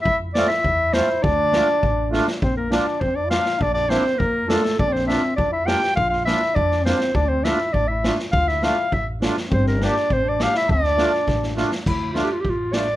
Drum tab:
CC |--------|--------|--------|--------|
SD |--oo--o-|--o---oo|--o---oo|-ooo--oo|
BD |o---o---|o---o---|o---o---|o---o---|

CC |--------|--------|--------|--------|
SD |-oo---oo|-ooo-ooo|--oo--oo|-oo---oo|
BD |o---o---|o---o---|o---o---|o---o---|

CC |--------|--------|x-------|
SD |-ooo--oo|-ooooooo|--o---o-|
BD |o---o---|o---o---|o---o---|